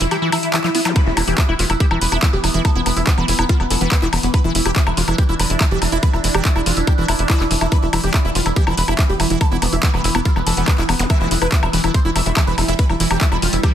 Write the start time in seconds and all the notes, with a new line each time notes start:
Already playing: E3 E4
0.01 E1 E3 E4, closed hi-hat
0.11 E3 G4, closed hi-hat, swell, high woodblock
0.22 E3 E4
0.32 E3 E4, open hi-hat, high woodblock
0.43 E4, closed hi-hat
0.54 E3 E4, clap, closed hi-hat, high woodblock
0.64 F3 E4, clap
0.75 B3 E4, open hi-hat
0.85 F3 E4, closed hi-hat, zap, high woodblock
0.96 E3 B3 B4, kick, closed hi-hat, high woodblock
1.06 E1 E3 E4
1.17 E1 E3 E4, open hi-hat, high woodblock
1.27 E1 E3 G4, closed hi-hat
1.38 E4, kick, clap, closed hi-hat, high woodblock
1.49 E1 E4
1.59 E1 E3 F4, open hi-hat
1.70 E1 E3 E4, closed hi-hat, high woodblock
1.80 E3 G4, kick, closed hi-hat
1.91 E1 E3 E4, high woodblock
2.01 E1 E3 B4, open hi-hat
2.12 E1 E4, closed hi-hat, high woodblock
2.23 E3 E4, kick, clap, closed hi-hat
2.33 E1 E3 G4
2.44 E1 E3 E4, open hi-hat, high woodblock
2.54 E1 E3 E4, closed hi-hat
2.65 A4, kick, closed hi-hat, high woodblock
2.75 E1 B3 E4
2.86 E1 E3 B3, open hi-hat, high woodblock
2.97 E1 E3 E4, closed hi-hat
3.07 E3 B3, kick, clap, closed hi-hat
3.18 E1 E3 B3, high woodblock
3.28 E1 E3 E4, open hi-hat
3.39 E1 B3 E4, high woodblock
3.49 E3 F4, kick, closed hi-hat
3.60 E1 E3 B3, high woodblock
3.70 E1 E3 A4, open hi-hat
3.81 E1 E3 B3, closed hi-hat
3.92 E3 B3, kick, clap, closed hi-hat, high woodblock
4.02 E1 E4, clap
4.13 E1 E3 B3, open hi-hat, high woodblock
4.23 E1 E3 B3, closed hi-hat
4.34 E3 D4 B4, kick, closed hi-hat, high woodblock
4.44 E1 E3 E4
4.55 E1 E3 E4, open hi-hat
4.65 E1 E4 G4, closed hi-hat, high woodblock
4.76 E3 E4, kick, clap, closed hi-hat
4.87 E1 E3 E4, high woodblock
4.97 E1 E3 F4, open hi-hat
5.08 E1 E3 E4, closed hi-hat, high woodblock
5.18 E3 G4, kick, closed hi-hat
5.29 E1 E4
5.39 E1 E3 B4, open hi-hat, high woodblock
5.50 E1 E3 E4, closed hi-hat
5.61 E3 E4, kick, clap, closed hi-hat, high woodblock
5.71 E1 E3 G4
5.82 E1 E3 E4, open hi-hat, high woodblock
5.92 E1 E4, closed hi-hat
6.03 E3 B4, kick, closed hi-hat
6.13 E1 E3 E4, high woodblock
6.24 E1 E3 E4, open hi-hat
6.34 E1 E3 G4, closed hi-hat, high woodblock
6.45 E3 E4, kick, clap, closed hi-hat
6.56 E1 E4, high woodblock
6.66 E1 E3 F4, open hi-hat
6.77 E1 E3 E4, closed hi-hat
6.87 E3 G4, kick, closed hi-hat, high woodblock
6.98 E1 E3 E4
7.08 E1 E4, open hi-hat, high woodblock
7.19 E1 E4, closed hi-hat
7.30 E4, kick, clap, closed hi-hat, high woodblock
7.40 E1 B3 E4, clap
7.51 E1 E3 E4, open hi-hat
7.61 E1 E3 E4, closed hi-hat, high woodblock
7.72 E3 B3 B4, kick, closed hi-hat, high woodblock
7.82 E1 E3 E4
7.93 E1 E3 E4, open hi-hat, high woodblock
8.04 E1 E3 G4, closed hi-hat
8.14 E3 E4, kick, clap, closed hi-hat, high woodblock
8.25 E1 E4
8.35 E1 E3 F4, open hi-hat
8.46 E1 E3 E4, closed hi-hat, high woodblock
8.56 E3 G4, kick, closed hi-hat
8.67 E1 E3 E4, high woodblock
8.77 E1 E3 B4, open hi-hat
8.88 E1 E4, closed hi-hat, high woodblock
8.99 E3 E4, kick, clap, closed hi-hat
9.09 E1 E3 G4
9.20 E1 E3 E4, open hi-hat, high woodblock
9.30 E1 E3 E4, closed hi-hat
9.41 E3 A4, kick, closed hi-hat, high woodblock
9.51 E1 B3 E4
9.62 E1 E3 B3, open hi-hat, high woodblock
9.73 E1 E3 E4, closed hi-hat
9.83 E3 B3, kick, clap, closed hi-hat
9.94 E1 E3 B3, high woodblock
10.04 E1 E3 E4, open hi-hat
10.15 E1 B3 E4, closed hi-hat, high woodblock
10.25 E3 F4, kick, closed hi-hat
10.36 E1 E3 B3, high woodblock
10.47 E1 E3 A4, open hi-hat
10.57 E1 E3 B3, closed hi-hat
10.68 E3 B3, kick, clap, closed hi-hat, high woodblock
10.78 E1 E4, clap
10.89 E1 E3 B3, open hi-hat, high woodblock
10.99 E1 E3 B3, closed hi-hat, zap
11.10 E3 G3 E5, kick, closed hi-hat, high woodblock
11.20 E1 E3 E4
11.31 E1 E3 E4, open hi-hat
11.42 E1 E4 B4, closed hi-hat, high woodblock
11.52 E4, kick, clap, closed hi-hat
11.63 E1 E3 E4, high woodblock
11.73 E1 E3 B4, open hi-hat
11.84 E1 E3 E4, closed hi-hat, high woodblock
11.94 C5, kick, closed hi-hat
12.05 E1 E4
12.16 E1 E3 E5, open hi-hat, high woodblock
12.26 E1 E3 E4, closed hi-hat
12.37 E3 E4, kick, clap, closed hi-hat, high woodblock
12.47 E1 E3 B4
12.58 E1 E3 E4, open hi-hat, high woodblock
12.68 E1 E4, closed hi-hat
12.79 E3 B4, kick, closed hi-hat
12.89 E1 E3 E4, high woodblock
13.00 E1 E3 E4, open hi-hat
13.11 E1 E3 G4, closed hi-hat, high woodblock
13.21 E3 E4, kick, clap, closed hi-hat
13.32 E1 E4, high woodblock
13.42 E1 E3 F4, open hi-hat
13.53 E1 E3 E4, closed hi-hat
13.63 E3 G4, kick, snare, closed hi-hat, high woodblock